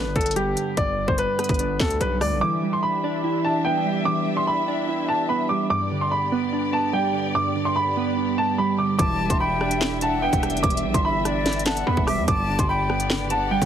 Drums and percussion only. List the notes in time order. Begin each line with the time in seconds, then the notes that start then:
0.16 kick, closed hi-hat
0.21 closed hi-hat
0.26 closed hi-hat
0.31 closed hi-hat
0.36 closed hi-hat
0.57 closed hi-hat
0.77 kick, closed hi-hat
1.08 kick
1.18 closed hi-hat
1.39 cross-stick, closed hi-hat
1.44 closed hi-hat
1.49 kick, closed hi-hat
1.54 closed hi-hat
1.59 closed hi-hat
1.80 kick, snare, clap
1.90 closed hi-hat
2.01 closed hi-hat
2.21 cross-stick, open hi-hat
8.99 kick, closed hi-hat
9.30 kick, closed hi-hat
9.61 cross-stick
9.71 closed hi-hat
9.81 snare, clap
10.01 closed hi-hat
10.33 kick, closed hi-hat
10.43 cross-stick, closed hi-hat
10.50 closed hi-hat
10.57 closed hi-hat
10.64 kick, closed hi-hat
10.70 closed hi-hat
10.77 closed hi-hat
10.94 kick, closed hi-hat
11.25 cross-stick, closed hi-hat
11.46 snare, closed hi-hat
11.53 closed hi-hat
11.59 closed hi-hat
11.66 snare, clap, closed hi-hat
11.77 closed hi-hat
11.97 kick
12.07 cross-stick, open hi-hat
12.28 kick, closed hi-hat
12.59 kick, closed hi-hat
12.90 cross-stick
13.00 closed hi-hat
13.10 snare, clap
13.30 closed hi-hat
13.62 kick, closed hi-hat